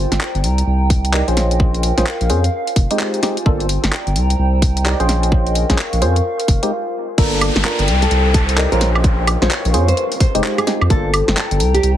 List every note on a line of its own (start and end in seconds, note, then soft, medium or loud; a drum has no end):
0.00 1.83 G5 medium
0.07 0.18 G1 loud
0.07 0.83 A#5 medium
0.12 snare medium
0.12 closed hi-hat medium
0.21 clap loud
0.35 0.45 G1 loud
0.35 closed hi-hat soft
0.44 0.63 C2 medium
0.44 open hi-hat loud
0.58 closed hi-hat medium
0.67 1.22 C2 medium
0.86 1.83 D#5 medium
0.86 kick loud
0.86 open hi-hat loud
1.05 closed hi-hat medium
1.13 1.26 D#4 medium
1.13 1.26 G4 medium
1.13 1.26 A#4 medium
1.13 1.26 D5 medium
1.13 clap loud
1.28 1.92 A#1 medium
1.28 1.94 C#4 medium
1.28 1.94 F4 medium
1.28 1.94 G#4 medium
1.28 1.94 C5 medium
1.28 closed hi-hat medium
1.36 2.92 A#4 medium
1.36 snare medium
1.36 open hi-hat loud
1.51 closed hi-hat medium
1.60 kick loud
1.74 2.92 F5 medium
1.74 closed hi-hat soft
1.83 open hi-hat loud
1.98 2.04 A#1 medium
1.98 2.07 C#4 medium
1.98 2.07 F4 medium
1.98 2.07 G#4 medium
1.98 2.07 C5 loud
1.98 snare medium
1.98 closed hi-hat medium
2.06 clap loud
2.21 2.31 A#1 loud
2.21 open hi-hat medium
2.30 2.49 F2 medium
2.30 2.44 C#4 loud
2.30 2.44 F4 medium
2.30 2.44 G#4 medium
2.30 2.44 C5 loud
2.30 open hi-hat loud
2.44 closed hi-hat medium
2.53 3.75 F4 medium
2.67 open hi-hat medium
2.76 2.87 F1 medium
2.76 kick medium
2.76 open hi-hat loud
2.85 3.75 C5 medium
2.91 3.21 G#3 medium
2.91 3.21 C4 medium
2.91 3.21 D#4 medium
2.91 3.21 G4 loud
2.91 closed hi-hat medium
2.96 3.46 G#5 medium
2.96 clap loud
3.14 closed hi-hat medium
3.23 3.37 G#3 medium
3.23 3.37 C4 medium
3.23 3.37 D#4 medium
3.23 3.37 G4 medium
3.23 snare medium
3.23 open hi-hat loud
3.37 closed hi-hat medium
3.46 3.78 G1 loud
3.46 3.66 A#3 medium
3.46 3.66 D4 medium
3.46 3.66 F4 medium
3.46 3.66 A4 medium
3.46 5.55 G5 medium
3.46 kick loud
3.60 closed hi-hat soft
3.69 open hi-hat loud
3.79 4.55 A#5 medium
3.83 3.90 G1 medium
3.83 snare medium
3.83 closed hi-hat medium
3.92 clap loud
4.07 4.17 G1 loud
4.07 closed hi-hat soft
4.16 4.35 C2 medium
4.16 5.55 C5 medium
4.16 open hi-hat loud
4.30 closed hi-hat medium
4.39 4.94 C2 loud
4.58 5.55 D#5 medium
4.58 kick medium
4.58 open hi-hat loud
4.77 closed hi-hat medium
4.85 4.98 D#4 medium
4.85 4.98 G4 medium
4.85 4.98 A#4 medium
4.85 4.98 D5 medium
4.85 clap loud
5.00 5.64 A#1 medium
5.00 5.66 C#4 medium
5.00 5.66 F4 medium
5.00 5.66 G#4 medium
5.00 5.66 C5 medium
5.00 closed hi-hat medium
5.09 6.64 A#4 medium
5.09 snare medium
5.09 open hi-hat loud
5.23 closed hi-hat medium
5.32 kick loud
5.47 6.64 F5 medium
5.47 closed hi-hat soft
5.55 open hi-hat loud
5.62 6.25 C#6 medium
5.70 5.76 A#1 loud
5.70 5.79 C#4 medium
5.70 5.79 F4 medium
5.70 5.79 G#4 medium
5.70 5.79 C5 medium
5.70 kick medium
5.70 snare medium
5.70 closed hi-hat medium
5.78 clap loud
5.93 6.03 A#1 loud
5.93 open hi-hat medium
6.02 6.21 F2 medium
6.02 6.16 C#4 medium
6.02 6.16 F4 medium
6.02 6.16 G#4 medium
6.02 6.16 C5 loud
6.02 open hi-hat loud
6.16 closed hi-hat medium
6.25 6.71 F4 medium
6.40 open hi-hat medium
6.48 6.59 F1 medium
6.48 kick loud
6.48 open hi-hat loud
6.63 6.72 G#3 loud
6.63 6.72 C4 medium
6.63 6.72 D#4 medium
6.63 6.72 G4 loud
6.63 closed hi-hat medium
7.18 7.50 G1 loud
7.18 7.88 A#3 loud
7.18 7.88 D4 medium
7.18 7.88 F4 medium
7.18 7.88 A4 loud
7.18 7.41 A#4 medium
7.18 9.27 G5 medium
7.18 kick loud
7.18 closed hi-hat medium
7.18 crash loud
7.18 downlifter medium
7.41 7.88 D5 medium
7.41 open hi-hat loud
7.41 high woodblock medium
7.56 7.62 G1 medium
7.56 snare medium
7.56 closed hi-hat soft
7.65 7.83 A#4 loud
7.65 clap loud
7.79 7.89 G1 loud
7.79 closed hi-hat medium
7.88 8.07 C2 medium
7.88 9.27 C5 medium
7.88 open hi-hat loud
8.02 8.18 A4 medium
8.02 closed hi-hat medium
8.11 8.66 C2 medium
8.11 closed hi-hat medium
8.31 8.53 A4 medium
8.31 9.27 D#5 medium
8.31 kick loud
8.31 open hi-hat loud
8.49 closed hi-hat medium
8.58 8.70 D#4 medium
8.58 8.70 G4 medium
8.58 8.70 A#4 medium
8.58 8.70 D5 medium
8.58 clap loud
8.72 9.36 A#1 medium
8.72 9.38 C#4 medium
8.72 9.38 F4 medium
8.72 9.38 G#4 medium
8.72 8.88 A#4 loud
8.72 9.38 C5 medium
8.72 closed hi-hat medium
8.81 10.36 A#4 medium
8.81 snare medium
8.81 open hi-hat loud
8.95 high woodblock medium
9.04 kick loud
9.04 closed hi-hat medium
9.24 10.37 F5 medium
9.24 open hi-hat loud
9.24 high woodblock medium
9.35 9.97 C#6 medium
9.42 9.48 A#1 loud
9.42 9.51 C#4 medium
9.42 9.51 F4 medium
9.42 9.51 G#4 medium
9.42 9.51 C5 medium
9.42 9.65 C#5 medium
9.42 snare medium
9.42 closed hi-hat soft
9.51 clap loud
9.65 9.75 A#1 loud
9.65 open hi-hat medium
9.74 9.93 F2 medium
9.74 9.89 C#4 loud
9.74 9.89 F4 medium
9.74 9.89 G#4 medium
9.74 9.89 C5 loud
9.74 open hi-hat loud
9.88 10.04 C5 loud
9.88 closed hi-hat medium
9.97 11.19 F4 medium
9.97 closed hi-hat medium
10.12 open hi-hat medium
10.20 10.39 C5 medium
10.20 kick loud
10.20 open hi-hat loud
10.35 10.42 F1 medium
10.35 10.65 G#3 loud
10.35 10.65 C4 medium
10.35 10.65 D#4 medium
10.35 10.65 G4 loud
10.35 11.19 C5 medium
10.35 closed hi-hat medium
10.44 clap loud
10.58 10.74 G#4 loud
10.58 closed hi-hat medium
10.58 high woodblock medium
10.67 10.82 G#3 medium
10.67 10.82 C4 medium
10.67 10.82 D#4 medium
10.67 10.82 G4 loud
10.67 snare medium
10.67 open hi-hat loud
10.81 10.88 F2 medium
10.81 high woodblock medium
10.90 11.22 G1 loud
10.90 11.10 A#3 medium
10.90 11.10 D4 medium
10.90 11.10 F4 medium
10.90 11.13 A4 loud
10.90 11.10 A4 loud
10.90 11.97 G5 medium
10.90 kick loud
10.90 closed hi-hat medium
11.14 open hi-hat loud
11.14 high woodblock medium
11.24 11.35 G1 medium
11.24 11.97 A#5 medium
11.24 snare medium
11.24 closed hi-hat soft
11.37 11.55 A4 loud
11.37 clap loud
11.51 11.61 G1 loud
11.51 closed hi-hat medium
11.60 11.79 C2 medium
11.60 11.97 C5 medium
11.60 open hi-hat loud
11.74 11.90 G4 medium
11.74 closed hi-hat medium
11.83 11.97 C2 medium
11.83 closed hi-hat medium